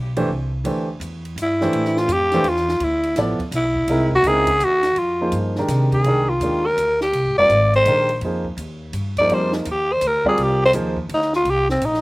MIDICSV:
0, 0, Header, 1, 6, 480
1, 0, Start_track
1, 0, Tempo, 360144
1, 868, Time_signature, 3, 2, 24, 8
1, 16008, End_track
2, 0, Start_track
2, 0, Title_t, "Tenor saxophone"
2, 0, Program_c, 0, 66
2, 1897, Note_on_c, 0, 64, 88
2, 2640, Note_on_c, 0, 65, 99
2, 2660, Note_off_c, 0, 64, 0
2, 2837, Note_on_c, 0, 67, 100
2, 2857, Note_off_c, 0, 65, 0
2, 3319, Note_on_c, 0, 65, 87
2, 3339, Note_off_c, 0, 67, 0
2, 3783, Note_on_c, 0, 64, 95
2, 3803, Note_off_c, 0, 65, 0
2, 4244, Note_off_c, 0, 64, 0
2, 4742, Note_on_c, 0, 64, 96
2, 5464, Note_off_c, 0, 64, 0
2, 5532, Note_on_c, 0, 66, 107
2, 5696, Note_on_c, 0, 68, 112
2, 5716, Note_off_c, 0, 66, 0
2, 6190, Note_on_c, 0, 66, 104
2, 6210, Note_off_c, 0, 68, 0
2, 6652, Note_on_c, 0, 65, 88
2, 6672, Note_off_c, 0, 66, 0
2, 7119, Note_off_c, 0, 65, 0
2, 7915, Note_on_c, 0, 68, 91
2, 8390, Note_on_c, 0, 65, 93
2, 8410, Note_off_c, 0, 68, 0
2, 8871, Note_on_c, 0, 70, 118
2, 8891, Note_off_c, 0, 65, 0
2, 9346, Note_off_c, 0, 70, 0
2, 9357, Note_on_c, 0, 67, 87
2, 9824, Note_off_c, 0, 67, 0
2, 9832, Note_on_c, 0, 74, 123
2, 10274, Note_off_c, 0, 74, 0
2, 10338, Note_on_c, 0, 72, 114
2, 10923, Note_off_c, 0, 72, 0
2, 12243, Note_on_c, 0, 74, 103
2, 12447, Note_on_c, 0, 72, 89
2, 12467, Note_off_c, 0, 74, 0
2, 12725, Note_off_c, 0, 72, 0
2, 12733, Note_on_c, 0, 63, 57
2, 12940, Note_on_c, 0, 67, 91
2, 12946, Note_off_c, 0, 63, 0
2, 13231, Note_on_c, 0, 72, 110
2, 13251, Note_off_c, 0, 67, 0
2, 13422, Note_on_c, 0, 70, 97
2, 13442, Note_off_c, 0, 72, 0
2, 13697, Note_off_c, 0, 70, 0
2, 13705, Note_on_c, 0, 68, 88
2, 13905, Note_on_c, 0, 67, 85
2, 13925, Note_off_c, 0, 68, 0
2, 14182, Note_off_c, 0, 67, 0
2, 14200, Note_on_c, 0, 72, 117
2, 14283, Note_off_c, 0, 72, 0
2, 14848, Note_on_c, 0, 63, 92
2, 15114, Note_off_c, 0, 63, 0
2, 15140, Note_on_c, 0, 65, 101
2, 15333, Note_on_c, 0, 67, 108
2, 15353, Note_off_c, 0, 65, 0
2, 15596, Note_off_c, 0, 67, 0
2, 15604, Note_on_c, 0, 60, 82
2, 15795, Note_on_c, 0, 63, 92
2, 15815, Note_off_c, 0, 60, 0
2, 16008, Note_off_c, 0, 63, 0
2, 16008, End_track
3, 0, Start_track
3, 0, Title_t, "Upright piano"
3, 0, Program_c, 1, 0
3, 222, Note_on_c, 1, 57, 80
3, 223, Note_on_c, 1, 52, 89
3, 227, Note_on_c, 1, 67, 79
3, 228, Note_on_c, 1, 72, 90
3, 230, Note_on_c, 1, 62, 77
3, 371, Note_off_c, 1, 57, 0
3, 372, Note_off_c, 1, 52, 0
3, 374, Note_off_c, 1, 67, 0
3, 374, Note_off_c, 1, 72, 0
3, 375, Note_off_c, 1, 62, 0
3, 861, Note_on_c, 1, 52, 67
3, 868, Note_on_c, 1, 57, 64
3, 878, Note_on_c, 1, 62, 63
3, 880, Note_on_c, 1, 67, 60
3, 881, Note_on_c, 1, 72, 68
3, 1147, Note_off_c, 1, 52, 0
3, 1151, Note_off_c, 1, 57, 0
3, 1155, Note_off_c, 1, 62, 0
3, 1156, Note_off_c, 1, 67, 0
3, 1157, Note_off_c, 1, 72, 0
3, 2151, Note_on_c, 1, 62, 70
3, 2156, Note_on_c, 1, 52, 72
3, 2158, Note_on_c, 1, 57, 65
3, 2162, Note_on_c, 1, 67, 65
3, 2163, Note_on_c, 1, 72, 83
3, 2758, Note_off_c, 1, 62, 0
3, 2761, Note_off_c, 1, 52, 0
3, 2762, Note_off_c, 1, 57, 0
3, 2764, Note_off_c, 1, 67, 0
3, 2764, Note_off_c, 1, 72, 0
3, 3116, Note_on_c, 1, 57, 82
3, 3117, Note_on_c, 1, 52, 92
3, 3117, Note_on_c, 1, 62, 74
3, 3126, Note_on_c, 1, 72, 92
3, 3127, Note_on_c, 1, 67, 85
3, 3257, Note_off_c, 1, 57, 0
3, 3258, Note_off_c, 1, 52, 0
3, 3258, Note_off_c, 1, 62, 0
3, 3262, Note_off_c, 1, 72, 0
3, 3263, Note_off_c, 1, 67, 0
3, 4234, Note_on_c, 1, 53, 72
3, 4236, Note_on_c, 1, 64, 67
3, 4240, Note_on_c, 1, 69, 65
3, 4242, Note_on_c, 1, 59, 69
3, 4247, Note_on_c, 1, 74, 84
3, 4513, Note_off_c, 1, 53, 0
3, 4514, Note_off_c, 1, 64, 0
3, 4516, Note_off_c, 1, 69, 0
3, 4517, Note_off_c, 1, 59, 0
3, 4519, Note_off_c, 1, 74, 0
3, 5194, Note_on_c, 1, 63, 66
3, 5196, Note_on_c, 1, 56, 77
3, 5202, Note_on_c, 1, 64, 69
3, 5203, Note_on_c, 1, 60, 64
3, 5210, Note_on_c, 1, 70, 83
3, 5472, Note_off_c, 1, 63, 0
3, 5473, Note_off_c, 1, 56, 0
3, 5476, Note_off_c, 1, 64, 0
3, 5477, Note_off_c, 1, 60, 0
3, 5480, Note_off_c, 1, 70, 0
3, 5682, Note_on_c, 1, 63, 79
3, 5690, Note_on_c, 1, 56, 78
3, 5690, Note_on_c, 1, 64, 76
3, 5691, Note_on_c, 1, 60, 78
3, 5691, Note_on_c, 1, 70, 89
3, 5957, Note_off_c, 1, 63, 0
3, 5960, Note_off_c, 1, 56, 0
3, 5961, Note_off_c, 1, 60, 0
3, 5961, Note_off_c, 1, 64, 0
3, 5961, Note_off_c, 1, 70, 0
3, 6946, Note_on_c, 1, 58, 62
3, 6947, Note_on_c, 1, 63, 56
3, 6951, Note_on_c, 1, 53, 60
3, 6955, Note_on_c, 1, 72, 75
3, 6956, Note_on_c, 1, 68, 60
3, 7391, Note_off_c, 1, 58, 0
3, 7392, Note_off_c, 1, 63, 0
3, 7394, Note_off_c, 1, 53, 0
3, 7396, Note_off_c, 1, 68, 0
3, 7396, Note_off_c, 1, 72, 0
3, 7442, Note_on_c, 1, 51, 65
3, 7443, Note_on_c, 1, 67, 66
3, 7444, Note_on_c, 1, 62, 67
3, 7447, Note_on_c, 1, 56, 62
3, 7448, Note_on_c, 1, 70, 79
3, 8044, Note_off_c, 1, 51, 0
3, 8045, Note_off_c, 1, 62, 0
3, 8045, Note_off_c, 1, 67, 0
3, 8046, Note_off_c, 1, 56, 0
3, 8047, Note_off_c, 1, 70, 0
3, 8079, Note_on_c, 1, 51, 66
3, 8088, Note_on_c, 1, 62, 60
3, 8089, Note_on_c, 1, 56, 62
3, 8091, Note_on_c, 1, 67, 62
3, 8098, Note_on_c, 1, 70, 73
3, 8356, Note_off_c, 1, 51, 0
3, 8360, Note_off_c, 1, 62, 0
3, 8361, Note_off_c, 1, 56, 0
3, 8361, Note_off_c, 1, 67, 0
3, 8365, Note_off_c, 1, 70, 0
3, 8565, Note_on_c, 1, 51, 57
3, 8567, Note_on_c, 1, 62, 56
3, 8568, Note_on_c, 1, 56, 51
3, 8573, Note_on_c, 1, 67, 51
3, 8579, Note_on_c, 1, 70, 60
3, 8839, Note_off_c, 1, 51, 0
3, 8840, Note_off_c, 1, 56, 0
3, 8840, Note_off_c, 1, 62, 0
3, 8843, Note_off_c, 1, 67, 0
3, 8846, Note_off_c, 1, 70, 0
3, 9847, Note_on_c, 1, 55, 67
3, 9848, Note_on_c, 1, 60, 58
3, 9855, Note_on_c, 1, 70, 62
3, 9856, Note_on_c, 1, 65, 59
3, 9858, Note_on_c, 1, 74, 72
3, 9984, Note_off_c, 1, 55, 0
3, 9984, Note_off_c, 1, 60, 0
3, 9988, Note_off_c, 1, 65, 0
3, 9988, Note_off_c, 1, 70, 0
3, 9989, Note_off_c, 1, 74, 0
3, 10496, Note_on_c, 1, 56, 56
3, 10497, Note_on_c, 1, 51, 59
3, 10499, Note_on_c, 1, 62, 59
3, 10500, Note_on_c, 1, 67, 57
3, 10504, Note_on_c, 1, 70, 71
3, 10766, Note_off_c, 1, 51, 0
3, 10766, Note_off_c, 1, 56, 0
3, 10767, Note_off_c, 1, 62, 0
3, 10767, Note_off_c, 1, 67, 0
3, 10769, Note_off_c, 1, 70, 0
3, 10987, Note_on_c, 1, 53, 62
3, 10989, Note_on_c, 1, 63, 51
3, 10994, Note_on_c, 1, 58, 58
3, 10997, Note_on_c, 1, 68, 59
3, 10997, Note_on_c, 1, 72, 70
3, 11251, Note_off_c, 1, 53, 0
3, 11252, Note_off_c, 1, 63, 0
3, 11255, Note_off_c, 1, 58, 0
3, 11256, Note_off_c, 1, 68, 0
3, 11256, Note_off_c, 1, 72, 0
3, 12259, Note_on_c, 1, 53, 66
3, 12262, Note_on_c, 1, 58, 60
3, 12263, Note_on_c, 1, 72, 64
3, 12267, Note_on_c, 1, 63, 57
3, 12268, Note_on_c, 1, 68, 58
3, 12416, Note_on_c, 1, 55, 71
3, 12417, Note_on_c, 1, 60, 66
3, 12417, Note_on_c, 1, 65, 66
3, 12422, Note_on_c, 1, 70, 70
3, 12422, Note_on_c, 1, 74, 78
3, 12686, Note_off_c, 1, 55, 0
3, 12686, Note_off_c, 1, 65, 0
3, 12687, Note_off_c, 1, 60, 0
3, 12689, Note_off_c, 1, 70, 0
3, 12689, Note_off_c, 1, 74, 0
3, 12854, Note_off_c, 1, 53, 0
3, 12856, Note_off_c, 1, 58, 0
3, 12857, Note_off_c, 1, 72, 0
3, 12859, Note_off_c, 1, 63, 0
3, 12859, Note_off_c, 1, 68, 0
3, 13665, Note_on_c, 1, 60, 72
3, 13669, Note_on_c, 1, 55, 76
3, 13671, Note_on_c, 1, 70, 77
3, 13676, Note_on_c, 1, 65, 76
3, 13676, Note_on_c, 1, 74, 89
3, 14278, Note_off_c, 1, 60, 0
3, 14280, Note_off_c, 1, 55, 0
3, 14281, Note_off_c, 1, 70, 0
3, 14283, Note_off_c, 1, 65, 0
3, 14283, Note_off_c, 1, 74, 0
3, 14313, Note_on_c, 1, 63, 70
3, 14316, Note_on_c, 1, 53, 75
3, 14319, Note_on_c, 1, 58, 67
3, 14322, Note_on_c, 1, 68, 68
3, 14333, Note_on_c, 1, 72, 85
3, 14595, Note_off_c, 1, 63, 0
3, 14596, Note_off_c, 1, 53, 0
3, 14598, Note_off_c, 1, 58, 0
3, 14599, Note_off_c, 1, 68, 0
3, 14605, Note_off_c, 1, 72, 0
3, 16008, End_track
4, 0, Start_track
4, 0, Title_t, "Upright bass"
4, 0, Program_c, 2, 32
4, 0, Note_on_c, 2, 35, 88
4, 361, Note_off_c, 2, 35, 0
4, 369, Note_on_c, 2, 36, 85
4, 844, Note_off_c, 2, 36, 0
4, 854, Note_on_c, 2, 38, 76
4, 1322, Note_off_c, 2, 38, 0
4, 1330, Note_on_c, 2, 40, 92
4, 1804, Note_off_c, 2, 40, 0
4, 1813, Note_on_c, 2, 43, 83
4, 2285, Note_off_c, 2, 43, 0
4, 2306, Note_on_c, 2, 45, 85
4, 2762, Note_off_c, 2, 45, 0
4, 2770, Note_on_c, 2, 41, 97
4, 3239, Note_off_c, 2, 41, 0
4, 3247, Note_on_c, 2, 40, 97
4, 3721, Note_off_c, 2, 40, 0
4, 3731, Note_on_c, 2, 38, 88
4, 4200, Note_off_c, 2, 38, 0
4, 4208, Note_on_c, 2, 33, 94
4, 4509, Note_off_c, 2, 33, 0
4, 4682, Note_on_c, 2, 35, 95
4, 5155, Note_off_c, 2, 35, 0
4, 5163, Note_on_c, 2, 36, 83
4, 5627, Note_off_c, 2, 36, 0
4, 5635, Note_on_c, 2, 37, 100
4, 6115, Note_off_c, 2, 37, 0
4, 6132, Note_on_c, 2, 39, 88
4, 6601, Note_off_c, 2, 39, 0
4, 6609, Note_on_c, 2, 41, 73
4, 7082, Note_off_c, 2, 41, 0
4, 7092, Note_on_c, 2, 43, 84
4, 7565, Note_off_c, 2, 43, 0
4, 7574, Note_on_c, 2, 48, 89
4, 8042, Note_off_c, 2, 48, 0
4, 8050, Note_on_c, 2, 36, 79
4, 8524, Note_off_c, 2, 36, 0
4, 8532, Note_on_c, 2, 39, 88
4, 9005, Note_off_c, 2, 39, 0
4, 9021, Note_on_c, 2, 38, 78
4, 9490, Note_off_c, 2, 38, 0
4, 9498, Note_on_c, 2, 36, 81
4, 9662, Note_on_c, 2, 32, 56
4, 9682, Note_off_c, 2, 36, 0
4, 9817, Note_off_c, 2, 32, 0
4, 9825, Note_on_c, 2, 29, 69
4, 9975, Note_off_c, 2, 29, 0
4, 9991, Note_on_c, 2, 32, 93
4, 10455, Note_off_c, 2, 32, 0
4, 10475, Note_on_c, 2, 34, 92
4, 10938, Note_off_c, 2, 34, 0
4, 10948, Note_on_c, 2, 41, 84
4, 11410, Note_off_c, 2, 41, 0
4, 11418, Note_on_c, 2, 39, 91
4, 11890, Note_off_c, 2, 39, 0
4, 11901, Note_on_c, 2, 43, 78
4, 12371, Note_off_c, 2, 43, 0
4, 12385, Note_on_c, 2, 41, 81
4, 12854, Note_off_c, 2, 41, 0
4, 12870, Note_on_c, 2, 39, 97
4, 13331, Note_off_c, 2, 39, 0
4, 13339, Note_on_c, 2, 38, 88
4, 13810, Note_off_c, 2, 38, 0
4, 13825, Note_on_c, 2, 36, 83
4, 14294, Note_off_c, 2, 36, 0
4, 14311, Note_on_c, 2, 39, 93
4, 14777, Note_off_c, 2, 39, 0
4, 14782, Note_on_c, 2, 38, 85
4, 15252, Note_off_c, 2, 38, 0
4, 15259, Note_on_c, 2, 36, 85
4, 15730, Note_off_c, 2, 36, 0
4, 15749, Note_on_c, 2, 34, 91
4, 16008, Note_off_c, 2, 34, 0
4, 16008, End_track
5, 0, Start_track
5, 0, Title_t, "Muted upright bass strokes"
5, 4515, Note_on_c, 9, 29, 44
5, 4648, Note_off_c, 9, 29, 0
5, 16008, End_track
6, 0, Start_track
6, 0, Title_t, "Drums"
6, 219, Note_on_c, 9, 51, 67
6, 352, Note_off_c, 9, 51, 0
6, 863, Note_on_c, 9, 51, 71
6, 996, Note_off_c, 9, 51, 0
6, 1346, Note_on_c, 9, 44, 57
6, 1346, Note_on_c, 9, 51, 70
6, 1479, Note_off_c, 9, 44, 0
6, 1479, Note_off_c, 9, 51, 0
6, 1665, Note_on_c, 9, 51, 50
6, 1798, Note_off_c, 9, 51, 0
6, 1832, Note_on_c, 9, 44, 67
6, 1832, Note_on_c, 9, 51, 78
6, 1966, Note_off_c, 9, 44, 0
6, 1966, Note_off_c, 9, 51, 0
6, 2144, Note_on_c, 9, 38, 38
6, 2278, Note_off_c, 9, 38, 0
6, 2305, Note_on_c, 9, 51, 67
6, 2438, Note_off_c, 9, 51, 0
6, 2464, Note_on_c, 9, 38, 31
6, 2597, Note_off_c, 9, 38, 0
6, 2621, Note_on_c, 9, 38, 45
6, 2755, Note_off_c, 9, 38, 0
6, 2780, Note_on_c, 9, 44, 59
6, 2780, Note_on_c, 9, 51, 65
6, 2914, Note_off_c, 9, 44, 0
6, 2914, Note_off_c, 9, 51, 0
6, 3086, Note_on_c, 9, 38, 38
6, 3086, Note_on_c, 9, 51, 51
6, 3219, Note_off_c, 9, 38, 0
6, 3219, Note_off_c, 9, 51, 0
6, 3252, Note_on_c, 9, 51, 70
6, 3385, Note_off_c, 9, 51, 0
6, 3417, Note_on_c, 9, 38, 29
6, 3550, Note_off_c, 9, 38, 0
6, 3579, Note_on_c, 9, 38, 47
6, 3712, Note_off_c, 9, 38, 0
6, 3733, Note_on_c, 9, 51, 69
6, 3866, Note_off_c, 9, 51, 0
6, 4043, Note_on_c, 9, 51, 53
6, 4177, Note_off_c, 9, 51, 0
6, 4209, Note_on_c, 9, 38, 38
6, 4209, Note_on_c, 9, 44, 59
6, 4209, Note_on_c, 9, 51, 66
6, 4342, Note_off_c, 9, 38, 0
6, 4342, Note_off_c, 9, 44, 0
6, 4342, Note_off_c, 9, 51, 0
6, 4522, Note_on_c, 9, 36, 64
6, 4527, Note_on_c, 9, 51, 49
6, 4656, Note_off_c, 9, 36, 0
6, 4660, Note_off_c, 9, 51, 0
6, 4690, Note_on_c, 9, 44, 76
6, 4690, Note_on_c, 9, 51, 86
6, 4823, Note_off_c, 9, 44, 0
6, 4823, Note_off_c, 9, 51, 0
6, 5002, Note_on_c, 9, 36, 50
6, 5135, Note_off_c, 9, 36, 0
6, 5166, Note_on_c, 9, 51, 72
6, 5299, Note_off_c, 9, 51, 0
6, 5480, Note_on_c, 9, 36, 53
6, 5614, Note_off_c, 9, 36, 0
6, 5647, Note_on_c, 9, 44, 57
6, 5647, Note_on_c, 9, 51, 70
6, 5780, Note_off_c, 9, 44, 0
6, 5780, Note_off_c, 9, 51, 0
6, 5955, Note_on_c, 9, 51, 76
6, 5961, Note_on_c, 9, 36, 56
6, 6088, Note_off_c, 9, 51, 0
6, 6094, Note_off_c, 9, 36, 0
6, 6128, Note_on_c, 9, 44, 73
6, 6262, Note_off_c, 9, 44, 0
6, 6435, Note_on_c, 9, 38, 44
6, 6435, Note_on_c, 9, 51, 51
6, 6569, Note_off_c, 9, 38, 0
6, 6569, Note_off_c, 9, 51, 0
6, 6609, Note_on_c, 9, 51, 59
6, 6743, Note_off_c, 9, 51, 0
6, 7086, Note_on_c, 9, 44, 51
6, 7086, Note_on_c, 9, 51, 62
6, 7219, Note_off_c, 9, 44, 0
6, 7219, Note_off_c, 9, 51, 0
6, 7404, Note_on_c, 9, 38, 33
6, 7538, Note_off_c, 9, 38, 0
6, 7574, Note_on_c, 9, 38, 41
6, 7574, Note_on_c, 9, 44, 68
6, 7574, Note_on_c, 9, 51, 76
6, 7707, Note_off_c, 9, 38, 0
6, 7707, Note_off_c, 9, 44, 0
6, 7707, Note_off_c, 9, 51, 0
6, 7888, Note_on_c, 9, 36, 58
6, 7891, Note_on_c, 9, 51, 45
6, 8022, Note_off_c, 9, 36, 0
6, 8025, Note_off_c, 9, 51, 0
6, 8053, Note_on_c, 9, 51, 66
6, 8186, Note_off_c, 9, 51, 0
6, 8540, Note_on_c, 9, 44, 54
6, 8540, Note_on_c, 9, 51, 66
6, 8673, Note_off_c, 9, 44, 0
6, 8673, Note_off_c, 9, 51, 0
6, 9030, Note_on_c, 9, 44, 62
6, 9030, Note_on_c, 9, 51, 70
6, 9163, Note_off_c, 9, 44, 0
6, 9163, Note_off_c, 9, 51, 0
6, 9339, Note_on_c, 9, 38, 47
6, 9472, Note_off_c, 9, 38, 0
6, 9506, Note_on_c, 9, 51, 70
6, 9639, Note_off_c, 9, 51, 0
6, 9990, Note_on_c, 9, 44, 49
6, 9990, Note_on_c, 9, 51, 61
6, 10123, Note_off_c, 9, 44, 0
6, 10123, Note_off_c, 9, 51, 0
6, 10310, Note_on_c, 9, 51, 44
6, 10443, Note_off_c, 9, 51, 0
6, 10468, Note_on_c, 9, 44, 66
6, 10468, Note_on_c, 9, 51, 75
6, 10601, Note_off_c, 9, 44, 0
6, 10601, Note_off_c, 9, 51, 0
6, 10779, Note_on_c, 9, 51, 50
6, 10912, Note_off_c, 9, 51, 0
6, 10943, Note_on_c, 9, 51, 60
6, 11076, Note_off_c, 9, 51, 0
6, 11258, Note_on_c, 9, 36, 44
6, 11391, Note_off_c, 9, 36, 0
6, 11428, Note_on_c, 9, 44, 63
6, 11428, Note_on_c, 9, 51, 62
6, 11562, Note_off_c, 9, 44, 0
6, 11562, Note_off_c, 9, 51, 0
6, 11902, Note_on_c, 9, 44, 63
6, 11902, Note_on_c, 9, 51, 74
6, 12035, Note_off_c, 9, 44, 0
6, 12035, Note_off_c, 9, 51, 0
6, 12218, Note_on_c, 9, 51, 52
6, 12219, Note_on_c, 9, 36, 49
6, 12352, Note_off_c, 9, 51, 0
6, 12353, Note_off_c, 9, 36, 0
6, 12387, Note_on_c, 9, 51, 62
6, 12520, Note_off_c, 9, 51, 0
6, 12694, Note_on_c, 9, 38, 52
6, 12828, Note_off_c, 9, 38, 0
6, 12865, Note_on_c, 9, 44, 49
6, 12865, Note_on_c, 9, 51, 75
6, 12998, Note_off_c, 9, 44, 0
6, 12998, Note_off_c, 9, 51, 0
6, 13342, Note_on_c, 9, 44, 65
6, 13342, Note_on_c, 9, 51, 80
6, 13475, Note_off_c, 9, 44, 0
6, 13475, Note_off_c, 9, 51, 0
6, 13657, Note_on_c, 9, 36, 60
6, 13791, Note_off_c, 9, 36, 0
6, 13828, Note_on_c, 9, 51, 65
6, 13962, Note_off_c, 9, 51, 0
6, 14303, Note_on_c, 9, 44, 62
6, 14303, Note_on_c, 9, 51, 73
6, 14436, Note_off_c, 9, 44, 0
6, 14436, Note_off_c, 9, 51, 0
6, 14618, Note_on_c, 9, 36, 57
6, 14751, Note_off_c, 9, 36, 0
6, 14785, Note_on_c, 9, 51, 72
6, 14918, Note_off_c, 9, 51, 0
6, 14947, Note_on_c, 9, 38, 30
6, 15080, Note_off_c, 9, 38, 0
6, 15102, Note_on_c, 9, 38, 44
6, 15235, Note_off_c, 9, 38, 0
6, 15263, Note_on_c, 9, 51, 61
6, 15397, Note_off_c, 9, 51, 0
6, 15585, Note_on_c, 9, 38, 51
6, 15719, Note_off_c, 9, 38, 0
6, 15746, Note_on_c, 9, 44, 56
6, 15746, Note_on_c, 9, 51, 76
6, 15880, Note_off_c, 9, 44, 0
6, 15880, Note_off_c, 9, 51, 0
6, 15914, Note_on_c, 9, 38, 31
6, 16008, Note_off_c, 9, 38, 0
6, 16008, End_track
0, 0, End_of_file